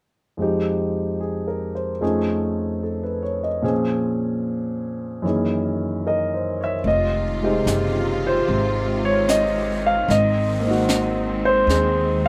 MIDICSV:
0, 0, Header, 1, 5, 480
1, 0, Start_track
1, 0, Key_signature, -4, "minor"
1, 0, Tempo, 808625
1, 232, Time_signature, 4, 2, 24, 8
1, 5029, Tempo, 798935
1, 7317, End_track
2, 0, Start_track
2, 0, Title_t, "Grand piano"
2, 0, Program_c, 0, 0
2, 222, Note_on_c, 0, 41, 37
2, 227, Note_on_c, 0, 53, 36
2, 231, Note_on_c, 0, 56, 36
2, 245, Note_on_c, 0, 63, 37
2, 250, Note_on_c, 0, 67, 43
2, 344, Control_c, 0, 64, 127
2, 715, Note_on_c, 0, 68, 32
2, 876, Note_on_c, 0, 70, 35
2, 1025, Note_off_c, 0, 68, 0
2, 1040, Note_on_c, 0, 72, 36
2, 1129, Note_off_c, 0, 70, 0
2, 1183, Note_off_c, 0, 53, 0
2, 1184, Note_off_c, 0, 41, 0
2, 1190, Note_off_c, 0, 63, 0
2, 1192, Note_on_c, 0, 53, 36
2, 1193, Note_on_c, 0, 41, 37
2, 1194, Note_on_c, 0, 61, 35
2, 1197, Note_on_c, 0, 57, 36
2, 1199, Note_off_c, 0, 56, 0
2, 1199, Note_on_c, 0, 63, 35
2, 1201, Note_on_c, 0, 68, 44
2, 1208, Note_off_c, 0, 67, 0
2, 1208, Control_c, 0, 64, 0
2, 1291, Note_off_c, 0, 72, 0
2, 1301, Control_c, 0, 64, 127
2, 1683, Note_on_c, 0, 69, 32
2, 1801, Note_on_c, 0, 71, 36
2, 1911, Note_off_c, 0, 69, 0
2, 1914, Note_on_c, 0, 73, 37
2, 2008, Note_off_c, 0, 71, 0
2, 2039, Note_on_c, 0, 75, 35
2, 2062, Note_off_c, 0, 73, 0
2, 2148, Note_off_c, 0, 53, 0
2, 2151, Note_off_c, 0, 61, 0
2, 2152, Note_off_c, 0, 68, 0
2, 2152, Note_on_c, 0, 46, 43
2, 2153, Note_off_c, 0, 41, 0
2, 2156, Note_off_c, 0, 57, 0
2, 2156, Note_off_c, 0, 63, 0
2, 2156, Note_on_c, 0, 60, 38
2, 2157, Note_on_c, 0, 53, 39
2, 2160, Note_on_c, 0, 61, 39
2, 2161, Note_on_c, 0, 68, 46
2, 2165, Control_c, 0, 64, 0
2, 2204, Note_off_c, 0, 75, 0
2, 2272, Control_c, 0, 64, 127
2, 3100, Note_on_c, 0, 42, 41
2, 3106, Note_off_c, 0, 46, 0
2, 3108, Note_off_c, 0, 60, 0
2, 3108, Note_on_c, 0, 52, 34
2, 3109, Note_off_c, 0, 53, 0
2, 3110, Note_off_c, 0, 61, 0
2, 3111, Note_off_c, 0, 68, 0
2, 3115, Note_on_c, 0, 58, 34
2, 3118, Control_c, 0, 64, 0
2, 3119, Note_on_c, 0, 51, 38
2, 3130, Note_on_c, 0, 68, 42
2, 3223, Control_c, 0, 64, 127
2, 3601, Note_on_c, 0, 70, 33
2, 3605, Note_on_c, 0, 75, 58
2, 3764, Note_on_c, 0, 72, 36
2, 3904, Note_off_c, 0, 70, 0
2, 3906, Note_off_c, 0, 75, 0
2, 3923, Note_on_c, 0, 73, 40
2, 3939, Note_on_c, 0, 76, 59
2, 4009, Note_off_c, 0, 72, 0
2, 4066, Note_off_c, 0, 42, 0
2, 4070, Note_off_c, 0, 52, 0
2, 4073, Note_off_c, 0, 58, 0
2, 4075, Note_off_c, 0, 51, 0
2, 4077, Control_c, 0, 64, 0
2, 4081, Note_off_c, 0, 68, 0
2, 4081, Note_on_c, 0, 75, 61
2, 4084, Note_off_c, 0, 76, 0
2, 4169, Note_off_c, 0, 73, 0
2, 4171, Control_c, 0, 64, 127
2, 4408, Note_on_c, 0, 56, 43
2, 4416, Note_on_c, 0, 48, 41
2, 4420, Note_on_c, 0, 67, 53
2, 4421, Note_on_c, 0, 63, 41
2, 4864, Note_off_c, 0, 75, 0
2, 4897, Note_on_c, 0, 65, 41
2, 4908, Note_on_c, 0, 72, 65
2, 5354, Note_off_c, 0, 72, 0
2, 5376, Note_on_c, 0, 73, 66
2, 5525, Note_off_c, 0, 73, 0
2, 5525, Note_on_c, 0, 75, 65
2, 5861, Note_off_c, 0, 75, 0
2, 5866, Note_on_c, 0, 77, 71
2, 6000, Note_off_c, 0, 56, 0
2, 6003, Control_c, 0, 64, 0
2, 6004, Note_off_c, 0, 48, 0
2, 6006, Note_off_c, 0, 63, 0
2, 6006, Note_off_c, 0, 67, 0
2, 6009, Note_off_c, 0, 65, 0
2, 6010, Note_off_c, 0, 77, 0
2, 6013, Note_on_c, 0, 75, 69
2, 6127, Control_c, 0, 64, 127
2, 6304, Note_on_c, 0, 58, 43
2, 6325, Note_on_c, 0, 60, 40
2, 6349, Note_on_c, 0, 63, 38
2, 6370, Note_on_c, 0, 66, 47
2, 6820, Note_on_c, 0, 72, 82
2, 6839, Note_off_c, 0, 75, 0
2, 6942, Note_off_c, 0, 60, 0
2, 6951, Note_on_c, 0, 60, 38
2, 6968, Note_on_c, 0, 68, 41
2, 7306, Note_off_c, 0, 72, 0
2, 7317, Note_off_c, 0, 58, 0
2, 7317, Note_off_c, 0, 60, 0
2, 7317, Note_off_c, 0, 63, 0
2, 7317, Note_off_c, 0, 66, 0
2, 7317, Note_off_c, 0, 68, 0
2, 7317, End_track
3, 0, Start_track
3, 0, Title_t, "String section"
3, 0, Program_c, 1, 48
3, 4061, Note_on_c, 1, 65, 57
3, 4063, Note_on_c, 1, 48, 48
3, 4063, Note_on_c, 1, 51, 54
3, 4064, Note_on_c, 1, 56, 49
3, 5973, Note_off_c, 1, 48, 0
3, 5973, Note_off_c, 1, 65, 0
3, 5974, Note_off_c, 1, 56, 0
3, 5995, Note_on_c, 1, 60, 50
3, 6006, Note_on_c, 1, 56, 50
3, 7317, Note_off_c, 1, 51, 0
3, 7317, Note_off_c, 1, 56, 0
3, 7317, Note_off_c, 1, 60, 0
3, 7317, End_track
4, 0, Start_track
4, 0, Title_t, "Upright bass"
4, 0, Program_c, 2, 32
4, 4061, Note_on_c, 2, 29, 71
4, 4523, Note_off_c, 2, 29, 0
4, 4544, Note_on_c, 2, 30, 57
4, 5005, Note_off_c, 2, 30, 0
4, 5035, Note_on_c, 2, 32, 65
4, 5974, Note_off_c, 2, 32, 0
4, 5997, Note_on_c, 2, 32, 73
4, 6932, Note_off_c, 2, 32, 0
4, 6951, Note_on_c, 2, 39, 69
4, 7317, Note_off_c, 2, 39, 0
4, 7317, End_track
5, 0, Start_track
5, 0, Title_t, "Drums"
5, 4075, Note_on_c, 9, 25, 27
5, 4553, Note_on_c, 9, 38, 39
5, 4553, Note_on_c, 9, 44, 41
5, 4612, Note_off_c, 9, 38, 0
5, 4612, Note_off_c, 9, 44, 0
5, 5039, Note_off_c, 9, 25, 0
5, 5039, Note_on_c, 9, 25, 33
5, 5519, Note_on_c, 9, 38, 40
5, 5519, Note_on_c, 9, 44, 51
5, 5579, Note_off_c, 9, 38, 0
5, 5579, Note_off_c, 9, 44, 0
5, 6006, Note_off_c, 9, 25, 0
5, 6006, Note_on_c, 9, 25, 33
5, 6006, Note_on_c, 9, 38, 25
5, 6066, Note_off_c, 9, 38, 0
5, 6480, Note_on_c, 9, 38, 40
5, 6480, Note_on_c, 9, 44, 49
5, 6540, Note_off_c, 9, 38, 0
5, 6540, Note_off_c, 9, 44, 0
5, 6965, Note_off_c, 9, 25, 0
5, 6965, Note_on_c, 9, 25, 29
5, 6965, Note_on_c, 9, 38, 27
5, 7025, Note_off_c, 9, 38, 0
5, 7317, Note_off_c, 9, 25, 0
5, 7317, End_track
0, 0, End_of_file